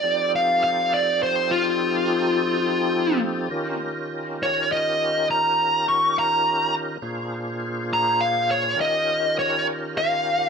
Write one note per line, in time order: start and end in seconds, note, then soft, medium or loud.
0.00 3.49 F3 medium
0.00 3.49 C4 medium
0.00 3.49 D#4 medium
0.00 3.49 G4 medium
0.00 3.49 A4 medium
0.00 0.31 D5 medium
0.36 0.62 F5 medium
0.64 0.91 F5 medium
0.94 1.20 D5 medium
1.23 1.49 C5 medium
1.51 3.20 F4 medium
3.50 6.98 D#3 medium
3.50 6.97 C#4 medium
3.50 6.98 F4 medium
3.50 6.97 G4 medium
3.50 6.98 A#4 medium
4.43 4.69 C#5 medium
4.72 5.27 D#5 medium
5.31 5.85 A#5 medium
5.89 6.15 C#6 medium
6.19 6.73 A#5 loud
7.02 8.75 A#2 medium
7.02 8.75 D4 medium
7.02 8.75 F4 medium
7.02 8.76 G#4 medium
7.02 8.75 C5 medium
7.93 8.20 A#5 medium
8.21 8.48 F5 medium
8.51 8.78 C#5 medium
8.76 10.49 D#3 medium
8.76 10.49 C#4 medium
8.76 10.49 F4 medium
8.76 10.49 G4 medium
8.76 10.49 A#4 medium
8.81 9.36 D#5 medium
9.39 9.66 C#5 medium
9.98 10.49 F5 medium